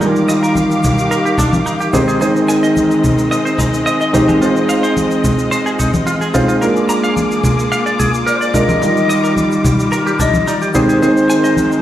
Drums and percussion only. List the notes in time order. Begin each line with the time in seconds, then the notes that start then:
0.01 shaker
0.16 shaker
0.28 shaker
0.43 shaker
0.55 high conga, shaker
0.71 shaker
0.83 low conga, shaker
0.98 shaker
1.11 shaker
1.26 shaker
1.38 low conga, shaker
1.53 high conga, shaker
1.66 shaker
1.79 shaker
1.81 shaker
1.93 low conga, shaker
2.08 shaker
2.21 shaker
2.36 shaker
2.48 shaker
2.63 shaker
2.76 high conga, shaker
2.91 shaker
3.04 low conga, shaker
3.18 shaker
3.31 shaker
3.46 shaker
3.58 low conga, shaker
3.74 shaker
3.87 shaker
4.00 shaker
4.14 low conga, shaker
4.29 high conga, shaker
4.42 shaker
4.56 shaker
4.69 shaker
4.84 shaker
4.97 high conga, shaker
5.11 shaker
5.24 low conga, shaker
5.39 shaker
5.52 shaker
5.67 shaker
5.79 low conga, shaker
5.93 high conga, shaker
6.07 shaker
6.21 shaker
6.34 low conga, shaker
6.49 shaker
6.62 shaker
6.76 shaker
6.89 shaker
7.04 shaker
7.17 high conga, shaker
7.31 shaker
7.44 low conga, shaker
7.59 shaker
7.72 shaker
7.87 shaker
8.00 low conga, shaker
8.14 shaker
8.27 shaker
8.41 shaker
8.54 low conga, shaker
8.69 high conga, shaker
8.82 shaker
8.97 shaker
9.10 shaker
9.24 shaker
9.36 high conga, shaker
9.51 shaker
9.64 low conga, shaker
9.79 shaker
9.91 shaker
10.07 shaker
10.19 low conga, shaker
10.33 high conga, shaker
10.47 shaker
10.61 shaker
10.74 low conga, shaker
10.89 shaker
11.02 shaker
11.17 shaker
11.30 shaker
11.44 shaker
11.57 high conga, shaker
11.71 shaker